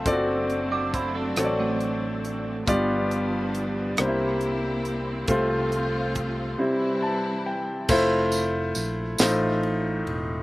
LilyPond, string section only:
\new Staff \with { instrumentName = "String section" } { \time 6/8 \key f \major \tempo 4. = 46 << { <fis a d'>2. | <f g d'>4. <bes e'>4. | <f a f'>4. <e g e'>4. | r2. | } \\ { c'2. | b4. c'4.~ | c'2. | r2. | } >> }